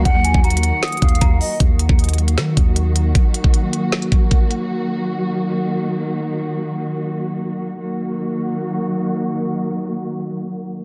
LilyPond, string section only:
\new Staff \with { instrumentName = "String section" } { \clef bass \time 4/4 \key ees \minor \tempo 4 = 155 << { <ges bes ges'>1 | <ges bes ges'>1~ | <ges bes ges'>1~ | <ges bes ges'>1~ |
<ges bes ges'>1 | <ees ges bes ges'>1~ | <ees ges bes ges'>1 | } \\ { ees1 | ees1~ | ees1 | ees1~ |
ees1 | r1 | r1 | } >> }